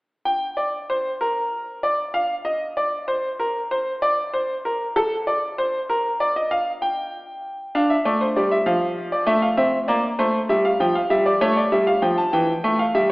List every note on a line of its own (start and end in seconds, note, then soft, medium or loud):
0.25 0.45 G5 medium
0.57 0.77 D5 medium
0.90 1.09 C5 medium
1.21 1.81 A#4 medium
1.83 2.02 D5 medium
2.14 2.33 F5 medium
2.45 2.64 D#5 medium
2.77 2.96 D5 medium
3.08 3.27 C5 medium
3.40 3.59 A#4 medium
3.71 3.90 C5 medium
4.02 4.21 D5 medium
4.33 4.53 C5 medium
4.65 4.84 A#4 medium
4.96 5.15 A4 medium
5.27 5.46 D5 medium
5.58 5.77 C5 medium
5.90 6.09 A#4 medium
6.20 6.35 D5 medium
6.36 6.51 D#5 medium
6.51 6.70 F5 medium
6.82 7.72 G5 medium
7.75 7.94 D4 medium
7.75 7.90 F5 medium
7.90 8.05 E5 medium
8.05 8.24 A3 medium
8.05 8.20 D5 medium
8.21 8.35 C5 medium
8.36 8.55 G3 medium
8.36 8.51 D5 medium
8.51 8.66 E5 medium
8.66 9.25 F3 medium
8.66 9.10 F5 medium
9.12 9.27 D5 medium
9.27 9.46 A3 medium
9.27 9.41 E5 medium
9.42 9.57 F5 medium
9.57 9.76 C4 medium
9.57 9.76 E5 medium
9.88 10.07 A#3 medium
9.88 10.07 D5 medium
10.19 10.38 A3 medium
10.19 10.38 C5 medium
10.49 10.68 G3 medium
10.49 10.64 E5 medium
10.65 10.79 F5 medium
10.80 10.99 F3 medium
10.80 10.95 G5 medium
10.95 11.10 F5 medium
11.10 11.29 G3 medium
11.10 11.25 E5 medium
11.26 11.40 D5 medium
11.41 11.60 A3 medium
11.41 11.56 C#5 medium
11.57 11.71 D5 medium
11.72 11.91 G3 medium
11.72 11.87 E5 medium
11.87 12.02 F5 medium
12.02 12.21 F3 medium
12.02 12.17 G5 medium
12.18 12.33 A5 medium
12.33 12.52 E3 medium
12.33 12.78 G5 medium
12.64 12.83 A3 medium
12.79 12.94 F5 medium
12.95 13.12 G3 medium
12.95 13.09 E5 medium